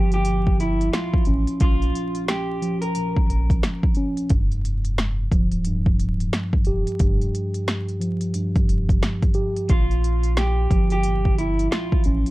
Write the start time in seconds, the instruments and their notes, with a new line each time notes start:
Already playing: sub bass G1, tine electric piano A#1 F3, clean electric guitar G4
0.12 clean electric guitar G4, closed hi-hat
0.25 tine electric piano A#1, closed hi-hat
0.47 kick
0.60 clean electric guitar E4, closed hi-hat
0.81 closed hi-hat
0.93 clean electric guitar F4, snare, closed hi-hat
1.14 kick
1.25 sub bass A1, tine electric piano C#4, closed hi-hat
1.47 closed hi-hat
1.60 tine electric piano A#1, sub bass A#1, clean electric guitar F4, kick, closed hi-hat
1.82 closed hi-hat
1.95 closed hi-hat
2.15 closed hi-hat
2.28 clean electric guitar G4, snare, closed hi-hat
2.62 tine electric piano F3, closed hi-hat
2.81 clean electric guitar A#4, closed hi-hat
2.95 tine electric piano A#1, closed hi-hat
3.16 kick
3.30 sub bass A#1, closed hi-hat
3.50 kick, closed hi-hat
3.63 snare, closed hi-hat
3.83 kick
3.95 tine electric piano C#4, closed hi-hat
4.17 closed hi-hat
4.30 sub bass F1, tine electric piano G2, kick, closed hi-hat
4.52 closed hi-hat
4.65 closed hi-hat
4.85 closed hi-hat
4.98 snare, closed hi-hat
5.32 sub bass D1, tine electric piano F3, kick, closed hi-hat
5.52 closed hi-hat
5.65 tine electric piano G2, closed hi-hat
5.86 kick
6.00 closed hi-hat
6.20 closed hi-hat
6.33 snare, closed hi-hat
6.53 kick
6.65 sub bass E1, tine electric piano G4, closed hi-hat
6.87 closed hi-hat
6.99 sub bass F1, tine electric piano G2, kick, closed hi-hat
7.21 closed hi-hat
7.35 closed hi-hat
7.54 closed hi-hat
7.68 snare, closed hi-hat
7.88 closed hi-hat
8.00 tine electric piano F3, closed hi-hat
8.21 closed hi-hat
8.34 tine electric piano G2, closed hi-hat
8.55 kick, closed hi-hat
8.69 sub bass F1, closed hi-hat
8.89 kick, closed hi-hat
9.03 snare, closed hi-hat
9.22 kick, closed hi-hat
9.34 tine electric piano G4, closed hi-hat
9.56 closed hi-hat
9.68 tine electric piano A#1, sub bass A#1, clean electric guitar F4, kick, closed hi-hat
9.91 closed hi-hat
10.04 closed hi-hat
10.23 closed hi-hat
10.37 clean electric guitar G4, snare, closed hi-hat
10.70 sub bass G1, tine electric piano F3, kick, closed hi-hat
10.90 clean electric guitar G4, closed hi-hat
11.03 tine electric piano A#1, closed hi-hat
11.25 kick
11.38 clean electric guitar E4, closed hi-hat
11.59 closed hi-hat
11.71 clean electric guitar F4, snare, closed hi-hat
11.92 kick
12.04 sub bass A1, tine electric piano C#4, closed hi-hat
12.26 closed hi-hat